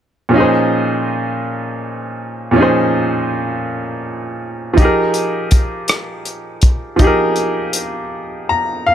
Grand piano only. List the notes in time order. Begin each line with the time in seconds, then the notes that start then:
0.29 A#2 F3
0.34 C#4 D#4 G#4
0.40 C5
2.51 A#2 F3
2.56 C#4 D#4
2.60 G#4 C5
4.74 F3 D#4
4.79 G4 G#4
4.85 A#4
6.96 F3 D#4
7.01 G4 G#4
7.07 A#4
8.49 A#5
8.86 F5